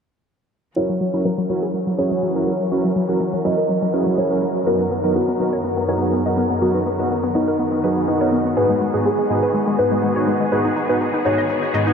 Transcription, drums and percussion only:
0.76 shaker soft
1.01 shaker medium
1.14 shaker soft
1.25 shaker soft
1.50 shaker medium
1.74 shaker soft
1.87 shaker soft
1.99 shaker medium
2.12 shaker soft
2.47 shaker medium
2.60 shaker soft
2.72 shaker soft
2.85 shaker soft
2.96 shaker medium
3.09 shaker soft
3.20 shaker soft
3.45 shaker medium
3.58 shaker soft
3.69 shaker soft
3.83 shaker soft
3.93 shaker medium
4.07 shaker soft
4.18 shaker soft
4.42 shaker medium
4.56 shaker soft
4.67 shaker medium
4.80 shaker soft
4.92 shaker medium
5.04 shaker soft
5.16 shaker soft
5.40 shaker medium
5.53 shaker soft
5.64 shaker medium
5.77 shaker soft
5.89 shaker medium
6.02 shaker soft
6.13 shaker soft
6.38 shaker medium
6.50 shaker soft
6.62 shaker soft
6.74 shaker soft
6.86 shaker medium
6.98 shaker soft
7.10 shaker soft
7.35 shaker medium
7.48 shaker soft
7.60 shaker soft
7.72 shaker soft
7.83 shaker medium
7.96 shaker soft
8.08 shaker soft
8.21 shaker soft
8.33 shaker medium
8.45 shaker soft
8.57 shaker medium
8.69 shaker soft
8.81 shaker medium
8.94 shaker soft
9.06 shaker soft
9.30 shaker medium
9.43 shaker soft
9.54 shaker soft
9.67 shaker soft
9.78 shaker medium
9.92 shaker soft
10.04 shaker soft
10.28 shaker medium
10.41 shaker soft
10.52 shaker soft
10.66 shaker soft
10.76 shaker medium
10.90 shaker soft
11.00 shaker soft
11.25 shaker medium
11.38 shaker soft
11.49 shaker soft
11.62 shaker soft
11.74 shaker medium
11.87 shaker soft

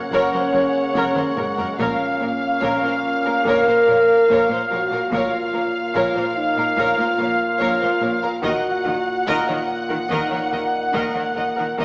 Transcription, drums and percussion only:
0.12 taiko medium
0.95 taiko high medium
1.16 taiko mid medium
1.37 taiko low-mid medium
1.58 taiko low medium
1.79 taiko medium
2.62 taiko medium
3.46 taiko medium
4.30 taiko medium
5.12 taiko medium
5.95 taiko medium
6.78 taiko medium
7.60 taiko medium
8.43 taiko medium
9.27 taiko medium
10.10 taiko medium
10.94 taiko medium
11.78 taiko medium

